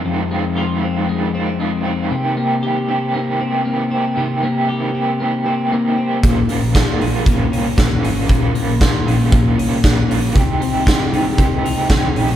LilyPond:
<<
  \new Staff \with { instrumentName = "Clean electric guitar" } { \time 4/4 \key c \phrygian \tempo 4 = 116 <f, aes c' f'>8 aes8 f'8 c'8 aes8 c'8 aes8 c'8 | c8 bes8 g'8 c'8 bes8 c'8 bes8 c'8 | c8 bes8 g'8 c'8 bes8 c'8 bes8 c'8 | bes,8 bes8 f'8 des'8 bes8 des'8 bes8 des'8 |
bes,8 bes8 f'8 des'8 bes8 des'8 bes8 des'8 | c8 c'8 f'16 g'16 ees'8 c'8 ees'8 c'8 des'16 ees'16 | }
  \new Staff \with { instrumentName = "Overdriven electric guitar" } { \time 4/4 \key c \phrygian <f, c ees aes c' f'>8 <ees aes c' f'>8 <f, c ees aes c' f'>8 <ees aes c' f'>8 <ees aes c' f'>8 <ees aes c' f'>8 <f, c ees aes c' f'>8 <ees aes c' f'>8 | <c ees bes c' g'>8 <bes c' g'>8 <c ees bes c' g'>8 <bes c' g'>8 <ees bes c' g'>8 <bes c' g'>8 <c ees bes c' g'>8 <bes c' g'>8 | <c ees bes c' g'>8 <bes c' g'>8 <c ees bes c' g'>8 <bes c' g'>8 <ees bes c' g'>8 <bes c' g'>8 <c ees bes c' g'>8 <bes c' g'>8 | <bes, f bes des' f'>8 <bes des' f'>8 <bes, f bes des' f'>8 <bes des' f'>8 <f bes des' f'>8 <bes des' f'>8 <bes, f bes des' f'>8 <bes des' f'>8 |
<bes, f bes des' f'>8 <bes des' f'>8 <bes, f bes des' f'>8 <bes des' f'>8 <f bes des' f'>8 <bes des' f'>8 <bes, f bes des' f'>8 <bes des' f'>8 | <c ees c' ees' g'>8 <c' ees' g'>8 <c ees c' ees' g'>8 <c' ees' g'>8 <ees c' ees' g'>8 <c' ees' g'>8 <c ees c' ees' g'>8 <c' ees' g'>8 | }
  \new Staff \with { instrumentName = "Fingered electric bass" } { \clef bass \time 4/4 \key c \phrygian r1 | r1 | r1 | bes,,8 r16 bes,,8 r16 bes,,8 bes,,8 c,8 bes,,8 aes,,8 |
bes,,8 r16 bes,,8 r16 bes,,8 bes,,8 c,8 bes,,8 bes,,8 | c,8 r16 c,8 r16 c,8 c,8 des,8 c,8 bes,,8 | }
  \new DrumStaff \with { instrumentName = "Drums" } \drummode { \time 4/4 r4 r4 r4 r4 | r4 r4 r4 r4 | r4 r4 r4 r4 | <hh bd>8 hho8 <hh bd sn>8 hho8 <hh bd>8 hho8 <hh bd sn>8 hho8 |
<hh bd>8 hho8 <hh bd sn>8 hho8 <hh bd>8 hho8 <hh bd sn>8 hho8 | <hh bd>8 hho8 <hh bd sn>8 hho8 <hh bd>8 hho8 <hh bd sn>8 hho8 | }
>>